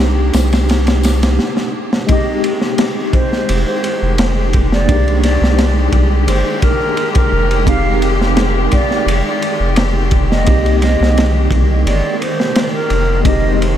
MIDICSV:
0, 0, Header, 1, 7, 480
1, 0, Start_track
1, 0, Tempo, 697674
1, 1437, Time_signature, 4, 2, 24, 8
1, 9477, End_track
2, 0, Start_track
2, 0, Title_t, "Flute"
2, 0, Program_c, 0, 73
2, 1439, Note_on_c, 0, 75, 101
2, 1655, Note_off_c, 0, 75, 0
2, 2158, Note_on_c, 0, 72, 91
2, 2486, Note_off_c, 0, 72, 0
2, 2521, Note_on_c, 0, 72, 95
2, 2842, Note_off_c, 0, 72, 0
2, 3255, Note_on_c, 0, 74, 95
2, 3569, Note_off_c, 0, 74, 0
2, 3600, Note_on_c, 0, 74, 95
2, 3927, Note_off_c, 0, 74, 0
2, 4316, Note_on_c, 0, 72, 84
2, 4534, Note_off_c, 0, 72, 0
2, 4553, Note_on_c, 0, 70, 98
2, 4883, Note_off_c, 0, 70, 0
2, 4922, Note_on_c, 0, 70, 102
2, 5242, Note_off_c, 0, 70, 0
2, 5281, Note_on_c, 0, 77, 108
2, 5496, Note_off_c, 0, 77, 0
2, 6005, Note_on_c, 0, 74, 100
2, 6329, Note_off_c, 0, 74, 0
2, 6375, Note_on_c, 0, 74, 101
2, 6689, Note_off_c, 0, 74, 0
2, 7091, Note_on_c, 0, 75, 96
2, 7407, Note_off_c, 0, 75, 0
2, 7449, Note_on_c, 0, 75, 101
2, 7771, Note_off_c, 0, 75, 0
2, 8158, Note_on_c, 0, 74, 85
2, 8375, Note_off_c, 0, 74, 0
2, 8405, Note_on_c, 0, 72, 90
2, 8729, Note_off_c, 0, 72, 0
2, 8766, Note_on_c, 0, 70, 91
2, 9085, Note_off_c, 0, 70, 0
2, 9119, Note_on_c, 0, 75, 103
2, 9335, Note_off_c, 0, 75, 0
2, 9477, End_track
3, 0, Start_track
3, 0, Title_t, "String section"
3, 0, Program_c, 1, 48
3, 0, Note_on_c, 1, 56, 74
3, 0, Note_on_c, 1, 67, 79
3, 959, Note_off_c, 1, 56, 0
3, 960, Note_off_c, 1, 67, 0
3, 1442, Note_on_c, 1, 56, 81
3, 1442, Note_on_c, 1, 67, 85
3, 9121, Note_on_c, 1, 72, 82
3, 9129, Note_off_c, 1, 67, 0
3, 9130, Note_off_c, 1, 56, 0
3, 9477, Note_off_c, 1, 72, 0
3, 9477, End_track
4, 0, Start_track
4, 0, Title_t, "Tine electric piano"
4, 0, Program_c, 2, 4
4, 0, Control_c, 2, 64, 127
4, 0, Note_on_c, 2, 58, 92
4, 0, Note_on_c, 2, 62, 84
4, 0, Note_on_c, 2, 63, 89
4, 0, Note_on_c, 2, 67, 104
4, 676, Note_off_c, 2, 58, 0
4, 683, Note_off_c, 2, 62, 0
4, 690, Note_off_c, 2, 63, 0
4, 698, Note_off_c, 2, 67, 0
4, 1422, Note_on_c, 2, 56, 95
4, 1434, Note_on_c, 2, 60, 83
4, 1447, Control_c, 2, 64, 0
4, 1448, Note_on_c, 2, 63, 86
4, 1461, Note_on_c, 2, 67, 104
4, 1563, Control_c, 2, 64, 127
4, 2602, Note_off_c, 2, 56, 0
4, 2608, Note_off_c, 2, 60, 0
4, 2615, Note_off_c, 2, 63, 0
4, 2622, Note_off_c, 2, 67, 0
4, 3342, Note_on_c, 2, 58, 89
4, 3357, Note_on_c, 2, 62, 85
4, 3367, Control_c, 2, 64, 0
4, 3371, Note_on_c, 2, 63, 86
4, 3384, Note_on_c, 2, 67, 105
4, 3490, Control_c, 2, 64, 127
4, 4522, Note_off_c, 2, 58, 0
4, 4530, Note_off_c, 2, 62, 0
4, 4537, Note_off_c, 2, 63, 0
4, 4543, Note_off_c, 2, 67, 0
4, 5261, Note_on_c, 2, 56, 99
4, 5276, Note_on_c, 2, 60, 91
4, 5287, Control_c, 2, 64, 0
4, 5290, Note_on_c, 2, 63, 89
4, 5305, Note_on_c, 2, 67, 106
4, 5419, Control_c, 2, 64, 127
4, 6442, Note_off_c, 2, 56, 0
4, 6449, Note_off_c, 2, 60, 0
4, 6456, Note_off_c, 2, 63, 0
4, 6463, Note_off_c, 2, 67, 0
4, 7186, Note_on_c, 2, 58, 99
4, 7199, Note_on_c, 2, 60, 83
4, 7207, Control_c, 2, 64, 0
4, 7214, Note_on_c, 2, 63, 87
4, 7226, Note_on_c, 2, 67, 101
4, 7316, Control_c, 2, 64, 127
4, 8364, Note_off_c, 2, 58, 0
4, 8371, Note_off_c, 2, 60, 0
4, 8378, Note_off_c, 2, 63, 0
4, 8384, Note_off_c, 2, 67, 0
4, 9103, Note_on_c, 2, 56, 97
4, 9119, Note_on_c, 2, 60, 88
4, 9125, Control_c, 2, 64, 0
4, 9131, Note_on_c, 2, 63, 88
4, 9145, Note_on_c, 2, 67, 103
4, 9240, Control_c, 2, 64, 127
4, 9477, Note_off_c, 2, 56, 0
4, 9477, Note_off_c, 2, 60, 0
4, 9477, Note_off_c, 2, 63, 0
4, 9477, Note_off_c, 2, 67, 0
4, 9477, End_track
5, 0, Start_track
5, 0, Title_t, "Synth texture"
5, 0, Program_c, 3, 99
5, 0, Note_on_c, 3, 67, 74
5, 960, Note_off_c, 3, 67, 0
5, 1438, Note_on_c, 3, 51, 83
5, 9477, Note_off_c, 3, 51, 0
5, 9477, End_track
6, 0, Start_track
6, 0, Title_t, "Analog synth bass"
6, 0, Program_c, 4, 38
6, 0, Note_on_c, 4, 36, 98
6, 216, Note_off_c, 4, 36, 0
6, 238, Note_on_c, 4, 36, 97
6, 957, Note_off_c, 4, 36, 0
6, 2406, Note_on_c, 4, 29, 104
6, 2513, Note_off_c, 4, 29, 0
6, 2769, Note_on_c, 4, 29, 86
6, 3365, Note_on_c, 4, 36, 79
6, 3376, Note_off_c, 4, 29, 0
6, 3703, Note_off_c, 4, 36, 0
6, 3726, Note_on_c, 4, 36, 90
6, 4057, Note_off_c, 4, 36, 0
6, 4077, Note_on_c, 4, 36, 103
6, 4314, Note_off_c, 4, 36, 0
6, 4319, Note_on_c, 4, 31, 80
6, 4429, Note_off_c, 4, 31, 0
6, 5040, Note_on_c, 4, 29, 87
6, 5977, Note_off_c, 4, 29, 0
6, 6237, Note_on_c, 4, 29, 97
6, 6348, Note_off_c, 4, 29, 0
6, 6607, Note_on_c, 4, 29, 86
6, 7209, Note_on_c, 4, 36, 78
6, 7219, Note_off_c, 4, 29, 0
6, 7545, Note_off_c, 4, 36, 0
6, 7575, Note_on_c, 4, 36, 98
6, 7901, Note_off_c, 4, 36, 0
6, 7918, Note_on_c, 4, 36, 100
6, 8161, Note_off_c, 4, 36, 0
6, 8165, Note_on_c, 4, 31, 81
6, 8272, Note_off_c, 4, 31, 0
6, 8879, Note_on_c, 4, 29, 77
6, 9477, Note_off_c, 4, 29, 0
6, 9477, End_track
7, 0, Start_track
7, 0, Title_t, "Drums"
7, 230, Note_on_c, 9, 51, 76
7, 232, Note_on_c, 9, 54, 86
7, 237, Note_on_c, 9, 38, 115
7, 299, Note_off_c, 9, 51, 0
7, 301, Note_off_c, 9, 54, 0
7, 306, Note_off_c, 9, 38, 0
7, 362, Note_on_c, 9, 51, 77
7, 367, Note_on_c, 9, 54, 38
7, 368, Note_on_c, 9, 38, 97
7, 431, Note_off_c, 9, 51, 0
7, 435, Note_off_c, 9, 54, 0
7, 436, Note_off_c, 9, 38, 0
7, 473, Note_on_c, 9, 54, 48
7, 477, Note_on_c, 9, 51, 75
7, 487, Note_on_c, 9, 38, 93
7, 541, Note_off_c, 9, 54, 0
7, 546, Note_off_c, 9, 51, 0
7, 555, Note_off_c, 9, 38, 0
7, 597, Note_on_c, 9, 51, 74
7, 598, Note_on_c, 9, 54, 34
7, 606, Note_on_c, 9, 38, 109
7, 666, Note_off_c, 9, 51, 0
7, 667, Note_off_c, 9, 54, 0
7, 675, Note_off_c, 9, 38, 0
7, 711, Note_on_c, 9, 54, 88
7, 718, Note_on_c, 9, 51, 73
7, 724, Note_on_c, 9, 38, 93
7, 780, Note_off_c, 9, 54, 0
7, 787, Note_off_c, 9, 51, 0
7, 793, Note_off_c, 9, 38, 0
7, 841, Note_on_c, 9, 54, 39
7, 845, Note_on_c, 9, 51, 80
7, 847, Note_on_c, 9, 38, 101
7, 910, Note_off_c, 9, 54, 0
7, 914, Note_off_c, 9, 51, 0
7, 916, Note_off_c, 9, 38, 0
7, 956, Note_on_c, 9, 38, 62
7, 1025, Note_off_c, 9, 38, 0
7, 1079, Note_on_c, 9, 38, 61
7, 1147, Note_off_c, 9, 38, 0
7, 1326, Note_on_c, 9, 38, 75
7, 1395, Note_off_c, 9, 38, 0
7, 1434, Note_on_c, 9, 51, 87
7, 1440, Note_on_c, 9, 36, 117
7, 1503, Note_off_c, 9, 51, 0
7, 1508, Note_off_c, 9, 36, 0
7, 1677, Note_on_c, 9, 51, 71
7, 1746, Note_off_c, 9, 51, 0
7, 1799, Note_on_c, 9, 38, 44
7, 1868, Note_off_c, 9, 38, 0
7, 1913, Note_on_c, 9, 51, 84
7, 1918, Note_on_c, 9, 38, 102
7, 1982, Note_off_c, 9, 51, 0
7, 1987, Note_off_c, 9, 38, 0
7, 2156, Note_on_c, 9, 36, 102
7, 2156, Note_on_c, 9, 51, 64
7, 2224, Note_off_c, 9, 36, 0
7, 2225, Note_off_c, 9, 51, 0
7, 2288, Note_on_c, 9, 38, 39
7, 2357, Note_off_c, 9, 38, 0
7, 2400, Note_on_c, 9, 51, 89
7, 2468, Note_off_c, 9, 51, 0
7, 2640, Note_on_c, 9, 51, 65
7, 2709, Note_off_c, 9, 51, 0
7, 2877, Note_on_c, 9, 51, 81
7, 2884, Note_on_c, 9, 38, 112
7, 2946, Note_off_c, 9, 51, 0
7, 2952, Note_off_c, 9, 38, 0
7, 3118, Note_on_c, 9, 51, 72
7, 3125, Note_on_c, 9, 36, 86
7, 3187, Note_off_c, 9, 51, 0
7, 3194, Note_off_c, 9, 36, 0
7, 3250, Note_on_c, 9, 38, 52
7, 3319, Note_off_c, 9, 38, 0
7, 3362, Note_on_c, 9, 51, 87
7, 3363, Note_on_c, 9, 36, 108
7, 3431, Note_off_c, 9, 51, 0
7, 3432, Note_off_c, 9, 36, 0
7, 3492, Note_on_c, 9, 51, 42
7, 3561, Note_off_c, 9, 51, 0
7, 3601, Note_on_c, 9, 51, 76
7, 3610, Note_on_c, 9, 38, 37
7, 3670, Note_off_c, 9, 51, 0
7, 3679, Note_off_c, 9, 38, 0
7, 3740, Note_on_c, 9, 38, 57
7, 3809, Note_off_c, 9, 38, 0
7, 3842, Note_on_c, 9, 51, 84
7, 3843, Note_on_c, 9, 38, 114
7, 3911, Note_off_c, 9, 51, 0
7, 3912, Note_off_c, 9, 38, 0
7, 4076, Note_on_c, 9, 51, 66
7, 4077, Note_on_c, 9, 36, 93
7, 4145, Note_off_c, 9, 51, 0
7, 4146, Note_off_c, 9, 36, 0
7, 4320, Note_on_c, 9, 51, 86
7, 4388, Note_off_c, 9, 51, 0
7, 4556, Note_on_c, 9, 51, 79
7, 4558, Note_on_c, 9, 36, 92
7, 4624, Note_off_c, 9, 51, 0
7, 4627, Note_off_c, 9, 36, 0
7, 4796, Note_on_c, 9, 51, 61
7, 4864, Note_off_c, 9, 51, 0
7, 4918, Note_on_c, 9, 51, 71
7, 4924, Note_on_c, 9, 36, 103
7, 4987, Note_off_c, 9, 51, 0
7, 4993, Note_off_c, 9, 36, 0
7, 5165, Note_on_c, 9, 51, 55
7, 5234, Note_off_c, 9, 51, 0
7, 5276, Note_on_c, 9, 36, 111
7, 5280, Note_on_c, 9, 51, 94
7, 5345, Note_off_c, 9, 36, 0
7, 5349, Note_off_c, 9, 51, 0
7, 5517, Note_on_c, 9, 51, 70
7, 5586, Note_off_c, 9, 51, 0
7, 5651, Note_on_c, 9, 38, 43
7, 5720, Note_off_c, 9, 38, 0
7, 5756, Note_on_c, 9, 51, 80
7, 5758, Note_on_c, 9, 38, 113
7, 5825, Note_off_c, 9, 51, 0
7, 5827, Note_off_c, 9, 38, 0
7, 5996, Note_on_c, 9, 51, 74
7, 6005, Note_on_c, 9, 36, 97
7, 6064, Note_off_c, 9, 51, 0
7, 6073, Note_off_c, 9, 36, 0
7, 6128, Note_on_c, 9, 38, 40
7, 6197, Note_off_c, 9, 38, 0
7, 6249, Note_on_c, 9, 51, 87
7, 6318, Note_off_c, 9, 51, 0
7, 6483, Note_on_c, 9, 51, 71
7, 6552, Note_off_c, 9, 51, 0
7, 6716, Note_on_c, 9, 51, 90
7, 6724, Note_on_c, 9, 38, 107
7, 6785, Note_off_c, 9, 51, 0
7, 6793, Note_off_c, 9, 38, 0
7, 6956, Note_on_c, 9, 51, 69
7, 6961, Note_on_c, 9, 36, 89
7, 7025, Note_off_c, 9, 51, 0
7, 7030, Note_off_c, 9, 36, 0
7, 7099, Note_on_c, 9, 38, 58
7, 7167, Note_off_c, 9, 38, 0
7, 7199, Note_on_c, 9, 51, 85
7, 7206, Note_on_c, 9, 36, 115
7, 7268, Note_off_c, 9, 51, 0
7, 7275, Note_off_c, 9, 36, 0
7, 7333, Note_on_c, 9, 51, 47
7, 7402, Note_off_c, 9, 51, 0
7, 7444, Note_on_c, 9, 51, 71
7, 7455, Note_on_c, 9, 38, 39
7, 7513, Note_off_c, 9, 51, 0
7, 7524, Note_off_c, 9, 38, 0
7, 7586, Note_on_c, 9, 38, 56
7, 7655, Note_off_c, 9, 38, 0
7, 7688, Note_on_c, 9, 51, 76
7, 7695, Note_on_c, 9, 38, 107
7, 7757, Note_off_c, 9, 51, 0
7, 7764, Note_off_c, 9, 38, 0
7, 7916, Note_on_c, 9, 36, 105
7, 7924, Note_on_c, 9, 51, 65
7, 7985, Note_off_c, 9, 36, 0
7, 7993, Note_off_c, 9, 51, 0
7, 8166, Note_on_c, 9, 51, 84
7, 8234, Note_off_c, 9, 51, 0
7, 8406, Note_on_c, 9, 51, 67
7, 8475, Note_off_c, 9, 51, 0
7, 8531, Note_on_c, 9, 38, 52
7, 8600, Note_off_c, 9, 38, 0
7, 8638, Note_on_c, 9, 51, 91
7, 8644, Note_on_c, 9, 38, 122
7, 8706, Note_off_c, 9, 51, 0
7, 8713, Note_off_c, 9, 38, 0
7, 8876, Note_on_c, 9, 51, 70
7, 8945, Note_off_c, 9, 51, 0
7, 9116, Note_on_c, 9, 36, 103
7, 9116, Note_on_c, 9, 51, 91
7, 9185, Note_off_c, 9, 36, 0
7, 9185, Note_off_c, 9, 51, 0
7, 9370, Note_on_c, 9, 51, 65
7, 9439, Note_off_c, 9, 51, 0
7, 9477, End_track
0, 0, End_of_file